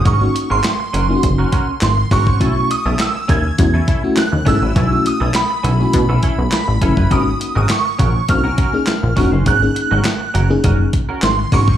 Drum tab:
HH |x-x-x-x-x-x-x-o-|x-x-x-x-x-x-x-o-|x-x-x-x-x-x-x-x-|x-x-x-x-x-x-x-o-|
CP |----x-------x---|----x-------x---|----x-------x---|----x-------x---|
SD |----o-------o---|----o-------o---|----o-------o---|----o-------o---|
BD |o-------o-o---oo|o-----o-o-o---o-|o-------o-o---oo|o-----o-o-o---o-|

HH |x-x-x-x-x-x-x-o-|
CP |----x-------x---|
SD |----o-------o---|
BD |o-------o-o---oo|